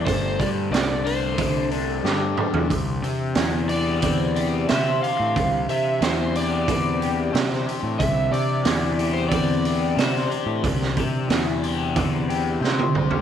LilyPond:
<<
  \new Staff \with { instrumentName = "Electric slide guitar" } { \time 4/4 \key c \mixolydian \tempo 4 = 91 c''8 d''8 d''8 c''4 r4. | r4. d''4. e''8 f''8~ | f''8 e''8 c''8 d''2 r8 | e''8 d''4~ d''16 c''16 d''2~ |
d''2. r4 | }
  \new Staff \with { instrumentName = "Overdriven electric guitar" } { \time 4/4 \key c \mixolydian <g, d d' g'>8 d8 g8 d'8 d8 d'8 g'8 d'8 | c8 c'8 e'8 g'8 c'8 g'8 c''8 g'8 | c8 c'8 e'8 g'8 c'8 g'8 c''8 g'8 | c8 c'8 e'8 g'8 c'8 g'8 c''8 g'8 |
c8 c'8 e'8 g'8 c'8 g'8 c''8 g'8 | }
  \new Staff \with { instrumentName = "Tonewheel organ" } { \time 4/4 \key c \mixolydian d'1~ | d'1~ | d'1~ | d'1~ |
d'1 | }
  \new Staff \with { instrumentName = "Tonewheel organ" } { \time 4/4 \key c \mixolydian <g a a'>1 | <e c' g'>1~ | <e c' g'>1~ | <e c' g'>1~ |
<e c' g'>1 | }
  \new Staff \with { instrumentName = "Fingered electric bass" } { \clef bass \time 4/4 \key c \mixolydian g,,8 g,8 c,2 g,8 r16 e,16 | c,8 c8 e,2 c8 r16 a,16 | c,8 c8 e,2 c8 r16 a,16 | c,8 c8 e,2 c8 r16 a,16 |
c,8 c8 e,2 c8 c,16 d,16 | }
  \new DrumStaff \with { instrumentName = "Drums" } \drummode { \time 4/4 <hho bd>8 <hho bd>8 <hho sn>8 hho8 <hho bd>8 hho8 sn8 toml16 tomfh16 | <hho bd>8 hho8 <hho sn>8 hho8 <hho bd>8 hho8 <hho sn>8 hho8 | <hho bd>8 hho8 <hho sn>8 hho8 <hho bd>8 hho8 <hho sn>16 sn16 hho8 | <hho bd>8 hho8 <hho sn>8 hho8 <hho bd>8 hho8 <hho sn>16 sn16 hho8 |
<hho bd>16 sn16 <hho bd>8 <hho sn>8 hho8 <hho bd>8 hho8 sn16 tommh16 toml16 tomfh16 | }
>>